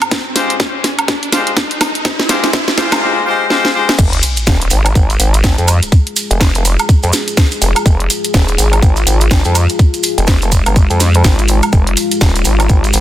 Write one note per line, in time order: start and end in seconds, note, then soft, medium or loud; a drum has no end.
0.00 2.98 G#3 medium
0.00 2.98 G4 medium
0.00 2.98 F5 medium
0.00 closed hi-hat medium
0.00 riser medium
0.00 high woodblock medium
0.11 kick loud
0.11 snare medium
0.11 closed hi-hat medium
0.36 0.54 G#3 medium
0.36 0.54 F4 medium
0.36 0.54 G4 medium
0.36 0.54 C5 medium
0.36 snare medium
0.36 open hi-hat loud
0.50 closed hi-hat medium
0.60 kick loud
0.60 snare medium
0.60 closed hi-hat medium
0.84 snare medium
0.84 open hi-hat medium
0.99 closed hi-hat medium
0.99 high woodblock medium
1.08 kick loud
1.08 snare medium
1.08 closed hi-hat medium
1.23 closed hi-hat soft
1.32 1.51 G#3 medium
1.32 1.51 F4 medium
1.32 1.51 G4 medium
1.32 1.51 C5 medium
1.32 snare medium
1.32 open hi-hat loud
1.47 closed hi-hat soft
1.57 kick loud
1.57 snare medium
1.57 closed hi-hat medium
1.71 closed hi-hat soft
1.81 snare medium
1.81 open hi-hat medium
1.81 high woodblock medium
1.95 closed hi-hat medium
2.05 kick loud
2.05 snare medium
2.05 closed hi-hat medium
2.19 snare medium
2.29 2.48 G#3 medium
2.29 2.48 F4 medium
2.29 2.48 G4 medium
2.29 2.48 C5 medium
2.29 snare loud
2.29 open hi-hat loud
2.44 snare medium
2.44 closed hi-hat medium
2.53 kick loud
2.53 snare loud
2.53 closed hi-hat medium
2.68 snare medium
2.78 2.96 G#3 medium
2.78 2.96 F4 medium
2.78 2.96 G4 medium
2.78 2.96 C5 medium
2.78 kick medium
2.78 snare loud
2.78 open hi-hat medium
2.92 snare medium
2.92 closed hi-hat soft
2.92 high woodblock medium
3.02 3.21 G#3 medium
3.02 3.21 F4 medium
3.02 3.21 G4 medium
3.02 3.21 C5 medium
3.26 3.45 G#3 medium
3.26 3.45 F4 medium
3.26 3.45 G4 medium
3.26 3.45 C5 medium
3.50 3.69 G#3 medium
3.50 3.69 F4 medium
3.50 3.69 G4 medium
3.50 3.69 C5 medium
3.50 snare medium
3.65 snare medium
3.74 3.93 G#3 medium
3.74 3.93 F4 medium
3.74 3.93 G4 medium
3.74 3.93 C5 medium
3.89 snare medium
3.99 4.21 F1 loud
3.99 13.00 G#3 medium
3.99 13.00 F4 medium
3.99 11.72 G#4 medium
3.99 kick loud
3.99 crash loud
3.99 sub drop medium
3.99 maracas medium
4.13 closed hi-hat medium
4.23 open hi-hat loud
4.23 maracas medium
4.36 closed hi-hat medium
4.36 maracas soft
4.47 4.70 D#1 loud
4.47 kick loud
4.47 snare loud
4.47 maracas medium
4.62 closed hi-hat medium
4.62 maracas soft
4.70 4.94 G#1 loud
4.70 open hi-hat loud
4.70 maracas loud
4.86 closed hi-hat medium
4.86 high woodblock medium
4.86 maracas soft
4.95 5.18 G#1 medium
4.95 kick loud
4.95 maracas medium
5.10 closed hi-hat soft
5.10 maracas soft
5.20 5.56 G#1 loud
5.20 open hi-hat loud
5.20 maracas medium
5.34 closed hi-hat medium
5.34 maracas soft
5.44 kick loud
5.44 snare loud
5.44 maracas medium
5.58 5.80 F2 medium
5.58 closed hi-hat soft
5.58 maracas soft
5.68 open hi-hat loud
5.68 high woodblock medium
5.68 maracas loud
5.83 closed hi-hat medium
5.83 maracas soft
5.92 kick loud
5.92 maracas medium
6.07 closed hi-hat medium
6.16 open hi-hat loud
6.16 maracas medium
6.31 6.77 F1 loud
6.31 closed hi-hat medium
6.31 maracas soft
6.41 kick loud
6.41 snare loud
6.41 maracas medium
6.54 closed hi-hat medium
6.54 maracas soft
6.65 open hi-hat loud
6.65 maracas medium
6.79 closed hi-hat medium
6.79 high woodblock medium
6.79 maracas soft
6.89 kick loud
6.89 maracas medium
7.03 7.12 F2 loud
7.03 closed hi-hat soft
7.03 maracas soft
7.13 snare medium
7.13 open hi-hat loud
7.13 maracas loud
7.28 closed hi-hat medium
7.28 maracas soft
7.37 kick loud
7.37 snare loud
7.37 maracas medium
7.51 closed hi-hat soft
7.51 maracas soft
7.62 7.74 F1 medium
7.62 open hi-hat loud
7.62 maracas loud
7.76 closed hi-hat medium
7.76 high woodblock medium
7.76 maracas soft
7.86 8.08 F1 loud
7.86 kick loud
7.86 maracas medium
8.00 closed hi-hat medium
8.10 open hi-hat loud
8.10 maracas loud
8.24 closed hi-hat medium
8.24 maracas soft
8.34 8.57 D#1 loud
8.34 kick loud
8.34 snare loud
8.34 maracas medium
8.48 closed hi-hat soft
8.48 maracas soft
8.58 8.81 G#1 loud
8.58 open hi-hat loud
8.58 maracas medium
8.73 closed hi-hat medium
8.73 high woodblock medium
8.73 maracas soft
8.82 9.05 G#1 loud
8.82 kick loud
8.82 maracas medium
8.96 closed hi-hat soft
8.96 maracas soft
9.06 9.43 G#1 loud
9.06 open hi-hat loud
9.06 maracas loud
9.21 closed hi-hat medium
9.21 maracas soft
9.31 kick loud
9.31 snare loud
9.31 maracas medium
9.45 9.67 F2 medium
9.45 closed hi-hat soft
9.45 maracas soft
9.55 open hi-hat loud
9.55 high woodblock medium
9.55 maracas loud
9.69 closed hi-hat medium
9.69 maracas soft
9.79 kick loud
9.79 maracas soft
9.94 closed hi-hat medium
9.94 maracas soft
10.03 open hi-hat loud
10.03 maracas medium
10.18 10.64 F1 medium
10.18 closed hi-hat medium
10.18 maracas soft
10.27 kick loud
10.27 snare loud
10.27 maracas medium
10.42 closed hi-hat soft
10.42 maracas soft
10.52 kick medium
10.52 open hi-hat loud
10.52 maracas loud
10.66 10.88 G1 medium
10.66 closed hi-hat medium
10.66 high woodblock medium
10.66 maracas soft
10.76 kick loud
10.76 maracas medium
10.90 11.23 F2 loud
10.90 closed hi-hat soft
10.90 maracas soft
11.00 snare medium
11.00 open hi-hat loud
11.00 maracas loud
11.14 closed hi-hat medium
11.14 maracas soft
11.24 11.61 G#1 loud
11.24 kick loud
11.24 snare loud
11.24 maracas medium
11.39 closed hi-hat soft
11.39 maracas soft
11.48 open hi-hat loud
11.48 maracas medium
11.63 closed hi-hat medium
11.63 high woodblock medium
11.63 maracas soft
11.73 11.95 F1 loud
11.73 13.00 G4 medium
11.73 kick loud
11.73 maracas medium
11.87 closed hi-hat soft
11.97 open hi-hat loud
11.97 maracas medium
12.11 closed hi-hat medium
12.11 maracas soft
12.21 12.44 D#1 loud
12.21 kick loud
12.21 snare loud
12.21 maracas medium
12.36 closed hi-hat soft
12.36 maracas soft
12.45 12.68 G#1 loud
12.45 open hi-hat loud
12.45 maracas medium
12.60 closed hi-hat medium
12.60 high woodblock medium
12.60 maracas soft
12.69 12.92 G#1 loud
12.69 kick loud
12.69 maracas medium
12.84 closed hi-hat soft
12.84 maracas soft
12.93 13.00 G#1 loud
12.93 open hi-hat loud
12.93 maracas loud